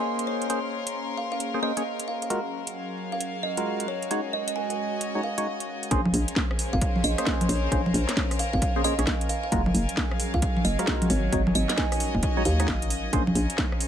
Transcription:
Already playing: synth stab A#3 C#4 G#4 C5, analog synth pad A#3 C#4 G#4 C5 F5, string section C#4 A#4 D#5 G#5 C6
0.19 closed hi-hat
0.27 kalimba C#5
0.42 closed hi-hat
0.50 synth stab A#3 C#4 G#4 C5, closed hi-hat
0.87 closed hi-hat
1.17 kalimba F5
1.32 kalimba F5
1.40 closed hi-hat
1.54 synth stab A#3 C#4 G#4 C5
1.62 synth stab A#3 C#4 G#4 C5, kalimba D#5
1.77 synth stab A#3 C#4 G#4 C#5, closed hi-hat
2.00 closed hi-hat
2.08 kalimba F5
2.22 kalimba F5, closed hi-hat
2.30 analog synth pad F#3 A#4, synth stab G#3 F4 F#4 A#4, string section F#4, closed hi-hat
2.67 string section F5, closed hi-hat
2.75 string section G#5
3.12 kalimba F5
3.21 closed hi-hat
3.43 kalimba D#5
3.57 synth stab G#3 F4 F#4 A#4, closed hi-hat
3.80 closed hi-hat
3.88 analog synth pad G#3 F#4 D#5, kalimba C#5
3.98 string section C#5 D#5
4.02 closed hi-hat
4.11 synth stab G#3 D#4 F#4 C#5, closed hi-hat
4.33 kalimba D#5
4.48 kalimba D#5, closed hi-hat
4.56 kalimba G#5
4.70 kalimba G#5, closed hi-hat
5.01 closed hi-hat
5.15 synth stab G#3 D#4 F#4 C#5
5.23 kalimba F5
5.38 synth stab G#3 D#4 F#4 C#5, closed hi-hat
5.60 closed hi-hat
5.83 closed hi-hat
5.91 fm bass A#1, synth stab A#3 C#4 G#4 C5, analog synth pad C#4 G#4 C5 F5, string section C#4, kick, closed hi-hat
6.05 high conga
6.14 fm bass A#1, string section A#4 C5, open hi-hat
6.28 closed hi-hat
6.36 kick, snare
6.51 cross-stick
6.59 open hi-hat
6.73 fm bass G#1, kalimba F5, kick
6.81 kick, closed hi-hat
6.96 high conga
7.04 fm bass A#1, kalimba D#5, open hi-hat
7.18 synth stab A#3 C#4 G#4 C5, cross-stick, closed hi-hat
7.27 kick, snare
7.41 closed hi-hat, high conga
7.49 fm bass A#1, kalimba C#5, open hi-hat
7.72 fm bass A#1, synth stab A#3 C#4 G#4 C5, analog synth pad A#4, kick, closed hi-hat
7.86 high conga
7.94 fm bass A#1, open hi-hat
8.09 snare, closed hi-hat
8.17 kick, snare
8.31 cross-stick, open hi-hat
8.39 kalimba F5, open hi-hat
8.53 fm bass G#1, kalimba F5, kick
8.62 kick, closed hi-hat
8.76 synth stab A#3 C#4 G#4 C5
8.84 synth stab A#3 C#4 G#4 C5, kalimba D#5, open hi-hat
8.99 fm bass A#1, synth stab A#3 C#4 G#4 C#5, cross-stick, closed hi-hat
9.07 kick, snare
9.21 closed hi-hat
9.29 kalimba F5, open hi-hat
9.43 kalimba F5
9.52 fm bass F#1, string section F#3, synth stab G#3 F4 F#4 A#4, analog synth pad C#4 G#4, kick, closed hi-hat
9.66 string section F5, high conga
9.74 fm bass F#1, open hi-hat
9.89 closed hi-hat
9.97 kick, snare
10.11 cross-stick
10.20 open hi-hat
10.34 fm bass C#2, kalimba F5, kick
10.42 kick, closed hi-hat
10.57 high conga
10.65 fm bass F#1, kalimba D#5, open hi-hat
10.79 synth stab G#3 F4 F#4 A#4, cross-stick, closed hi-hat
10.87 kick, snare
11.02 closed hi-hat, high conga
11.10 fm bass G#1, analog synth pad D#4 F#4, kalimba C#5, open hi-hat
11.23 string section C#5
11.32 fm bass G#1, synth stab G#3 D#4 F#4 C#5, kick, closed hi-hat
11.47 string section D#5, high conga
11.55 fm bass G#1, kalimba D#5, open hi-hat
11.69 kalimba D#5, snare, closed hi-hat
11.78 kalimba G#5, kick, snare
11.92 kalimba G#5, cross-stick, open hi-hat
12.00 open hi-hat
12.15 fm bass F#1, kick
12.23 kick, closed hi-hat
12.37 synth stab G#3 D#4 F#4 C#5
12.45 fm bass D#2, kalimba F5, open hi-hat
12.60 synth stab G#3 D#4 F#4 C#5, cross-stick, closed hi-hat
12.68 fm bass G#1, kick, snare
12.82 closed hi-hat
12.90 open hi-hat
13.13 fm bass A#1, synth stab A#3 C#4 G#4 C5, analog synth pad C#4 G#4 C5 F5, string section C#4, kick, closed hi-hat
13.25 string section C5, high conga
13.35 fm bass A#1, string section A#4, open hi-hat
13.50 closed hi-hat
13.58 kick, snare
13.72 cross-stick
13.80 open hi-hat

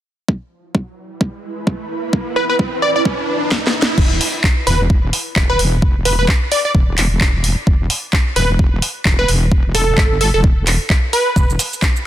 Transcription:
0.28 ambient pad E4, kick, riser
0.52 ambient pad B4
0.75 kick
1.21 ambient pad B5, kick
1.67 kick
2.13 kick
2.36 digital synth lead B4
2.50 digital synth lead B4
2.59 kick
2.82 digital synth lead D5
2.96 digital synth lead D5
3.05 kick
3.52 kick, snare
3.67 snare
3.82 snare
3.98 wobble bass E1, kick, crash
4.21 open hi-hat
4.44 kick, clap
4.67 wobble bass E1, digital synth lead B4, open hi-hat
4.90 kick
5.13 open hi-hat
5.36 wobble bass E1, kick, clap
5.50 digital synth lead B4
5.59 wobble bass E1, open hi-hat
5.82 kick
5.96 wobble bass E1
6.05 digital synth lead B4, open hi-hat
6.19 digital synth lead B4
6.28 kick, clap
6.52 digital synth lead D5, open hi-hat
6.65 digital synth lead D5
6.75 wobble bass E1, kick
6.98 clap, open hi-hat
7.11 wobble bass E1
7.21 kick, clap
7.44 open hi-hat
7.67 wobble bass E1, kick
7.90 open hi-hat
8.13 kick, clap
8.36 wobble bass E1, digital synth lead B4, open hi-hat
8.59 kick
8.82 open hi-hat
9.05 wobble bass E1, kick, clap
9.19 digital synth lead B4
9.28 wobble bass E1, open hi-hat
9.52 kick
9.65 wobble bass E1
9.75 digital synth lead A4, open hi-hat
9.98 wobble bass G1, kick, clap
10.21 digital synth lead A4, open hi-hat
10.34 wobble bass E1, digital synth lead A4
10.44 kick
10.67 clap, open hi-hat
10.90 kick, clap
11.13 digital synth lead B4, open hi-hat
11.36 wobble bass E1, kick, shaker
11.50 shaker
11.59 open hi-hat, shaker
11.73 shaker
11.82 kick, clap, shaker
11.96 shaker

